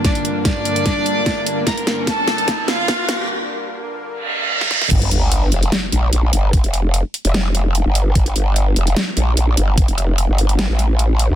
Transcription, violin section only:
X:1
M:4/4
L:1/8
Q:1/4=148
K:Gm
V:1 name="Violin section"
[Dd] z [Dd]6 | [Bb] z [Aa]3 [Ff]3 | z8 | z8 |
z8 | z8 | z8 |]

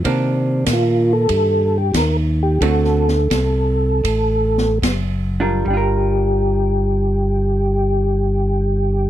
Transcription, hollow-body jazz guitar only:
X:1
M:4/4
L:1/8
Q:"Swing" 1/4=80
K:Gm
V:1 name="Hollow-body jazz guitar"
[E,B,D]4- [E,B,D] z3 | [D,A,C^F] z6 [G,D=FB] | [G,DFB]8 |]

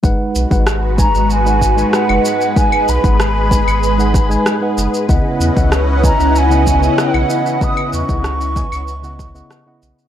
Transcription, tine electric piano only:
X:1
M:4/4
L:1/16
Q:1/4=95
K:G#phr
V:1 name="Tine electric piano"
[G,DBf]3 [G,DBf] z2 [G,DBg] z2 [G,DBf]2 [G,DBg]2 [G,DBf]3 | [G,DBf]3 [G,DBf] z2 [G,DBg] z2 [G,DBf]2 [G,DBg]2 [G,DBf]3 | [C,B,Edf]3 [C,B,Edf] z2 [C,B,Edg] z2 [C,B,Edf]2 [C,B,Edg]2 [C,B,Edf]3 | [C,B,Edf]3 [C,B,Edf] z2 [C,B,Edg] z2 [C,B,Edf]2 [C,B,Edf]2 [C,B,Edf]3 |]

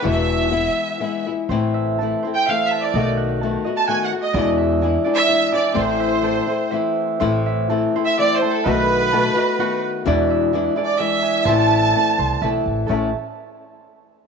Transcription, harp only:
X:1
M:3/4
L:1/8
Q:1/4=127
K:Am
V:1 name="Harp"
z6 | c e a c e a | ^d ^f a d f z | d e ^g d e g |
c e a c e z | c e a c e a | ^d ^f a d f z | d e ^g d e g |
c e a c e z | [A^cea] z4 z |]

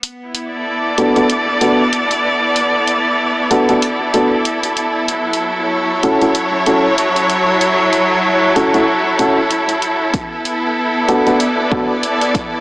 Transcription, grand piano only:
X:1
M:4/4
L:1/16
Q:"Swing 16ths" 1/4=95
K:Bm
V:1 name="Grand piano"
z6 [B,DFA] [B,DFA] z2 [B,DFA] z4 z | z6 [B,DFA] [B,DFA] z2 [B,DFA] z4 z | z6 [CEFA] [CEFA] z2 [CEFA] z4 z | z6 [CEFA] [CEFA] z2 [CEFA] z4 z |
z6 [B,DFA] [B,DFA] z2 [B,DFA] z4 z |]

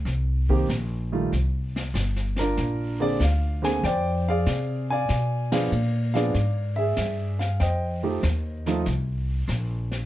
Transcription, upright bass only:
X:1
M:4/4
L:1/8
Q:"Swing" 1/4=96
K:Bb
V:1 name="Upright bass" clef=bass
C,,2 B,,,2 C,,2 G,,,2 | B,,,2 D,,2 F,,2 C,2 | =B,,2 _B,,2 ^G,,2 =G,,2 | F,,2 E,,2 C,,2 B,,,2 |]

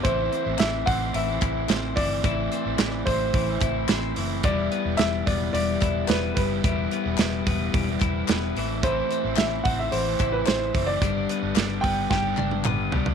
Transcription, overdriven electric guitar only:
X:1
M:4/4
L:1/16
Q:1/4=110
K:Ador
V:1 name="Overdriven electric guitar"
[A,,E,A,CE]3 [A,CE]3 [A,,E,A,CE]3 [A,CE]4- [A,CE] [A,,E,A,CE]2 | [A,,E,A,CE]3 [A,CE]3 [A,,E,A,CE]3 [A,CE]4- [A,CE] [A,,E,A,CE]2 | [E,G,B,E]3 [G,B,E]3 [E,G,B,E]3 [G,B,E]4- [G,B,E] [E,G,B,E]2 | [E,G,B,E]3 [G,B,E]3 [E,G,B,E]3 [G,B,E]4- [G,B,E] [A,,E,A,CE]2 |
[A,,E,A,CE]3 [A,CE]3 [A,,E,A,CE]3 [A,CE]4- [A,CE] [A,,E,A,CE]2 | [G,,D,G,B,D]3 [G,B,D]3 [G,,D,G,B,D]3 [G,B,D]4- [G,B,D] [G,,D,G,B,D]2 |]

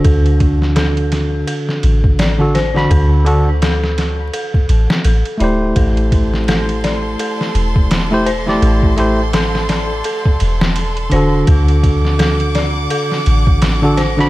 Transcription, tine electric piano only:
X:1
M:4/4
L:1/16
Q:"Swing 16ths" 1/4=84
K:Dmix
V:1 name="Tine electric piano"
[D,DFA]12- [D,DFA] [D,DFA] z [D,DFb]- | [D,DFb]2 [D,DFA] z8 z3 [A,EGc]2- | [A,EGc]12- [A,EGc] [A,EGc] z [A,EGd]- | [A,EGd]2 [A,EGc] z8 z3 [D,DFA]2- |
[D,DFA]12- [D,DFA] [D,DFA] z [D,DFb] |]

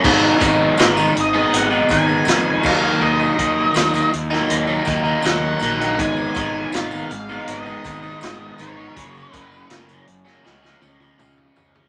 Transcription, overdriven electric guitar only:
X:1
M:4/4
L:1/16
Q:1/4=81
K:G#dor
V:1 name="Overdriven electric guitar" clef=bass
[G,,D,G,B,D]2 [D,G,B,D]2 [G,,D,G,B,D] [G,B,D]2 [G,B,D]2 [G,B,D] [D,G,B,D] [G,B,D] [G,,D,G,B,D]2 [D,F,A,D] [F,A,D] | [D,F,A,D]2 [D,F,A,D]2 [D,F,A,D] [F,A,D]2 [F,A,D]2 [F,A,D] [D,F,A,D] [F,A,D] [D,F,A,D]2 [D,F,A,D] [F,A,D] | [G,,D,G,B,D]2 [D,G,B,D]2 [G,,D,G,B,D] [G,B,D]2 [G,B,D]2 [G,B,D] [D,G,B,D] [G,B,D] [G,,D,G,B,D]2 [D,G,B,D] [G,B,D] | [F,,C,F,A,C]2 [C,F,A,C]2 [F,,C,F,A,C] [F,A,C]2 [F,A,C] [C,E,G,C] [E,G,C] [C,E,G,C] [E,G,C] [C,E,G,C]2 [C,E,G,C] [E,G,C] |]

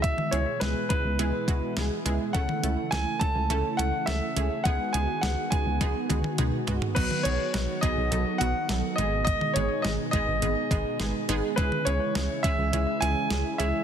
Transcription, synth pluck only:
X:1
M:4/4
L:1/8
Q:1/4=104
K:G#phr
V:1 name="Synth pluck"
[G,B,EG] [G,B,EG] [G,B,EG] [G,B,EG] [G,B,EG] [G,B,EF] [G,B,EG] [G,B,EG] | [A,CEA] [A,CEA] [A,CEA] [A,CEA] [A,CEA] [A,CEA] [A,CEA] [A,CEG] | [G,B,DG] [G,B,DG] [G,B,DG] [G,B,DG] [G,B,DG] [G,B,DG] [G,B,DG] [G,B,DF] | [F,B,DF] [F,B,DG] [F,B,DF] [F,B,DG] [F,B,DA] [F,B,DF] [F,B,DA] [G,B,DG]- |
[G,B,DG] [G,B,DG] [G,B,DG] [G,B,DG] [G,B,DG] [G,B,DG] [G,B,DG] [G,B,DG] | [G,CEG] [G,CEG] [G,CEG] [G,CEG] [G,CEG] [G,CEG] [G,CEG] [G,CEG] |]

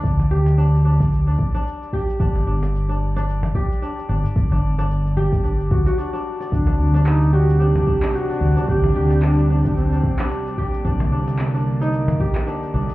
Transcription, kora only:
X:1
M:4/4
L:1/16
Q:"Swing 16ths" 1/4=111
K:none
V:1 name="Kora"
z2 G2 D2 D z2 D z D z2 G2 | D2 D z2 D z D z2 G2 D2 D z | z D z D z2 G2 D z ^F F D D z d | z D z D z2 G2 D2 D z2 D z D |
z2 G2 D2 D z2 D z D z2 G2 | D2 D z2 D z _E z2 G2 D2 D z |]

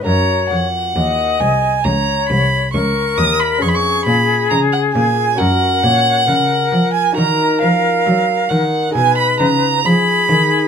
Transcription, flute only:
X:1
M:4/4
L:1/8
Q:1/4=67
K:Gb
V:1 name="Flute"
d z e2 d2 B2 | A4 B d B2 | [K:D#m] A3 z B2 G2 |]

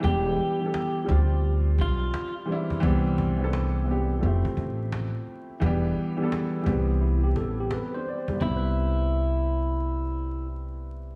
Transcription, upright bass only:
X:1
M:4/4
L:1/16
Q:"Swing 16ths" 1/4=86
K:C
V:1 name="Upright bass" clef=bass
E,,,2 z4 D,,4 B,,,2 z4 | C,,8 F,,, z A,,,3 z3 | E,,,2 z4 C,,4 A,,,2 z4 | C,,16 |]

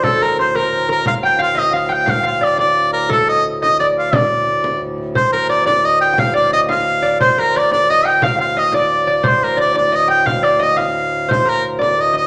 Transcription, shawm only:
X:1
M:6/8
L:1/8
Q:3/8=117
K:Dphr
V:1 name="Shawm"
A B c B2 B | f g f e f g | f f d d2 B | A e z e d f |
d4 z2 | c B d d e g | f d e f3 | c B d d e g |
f f e d3 | c B d d e g | f d e f3 | c B z d e e |]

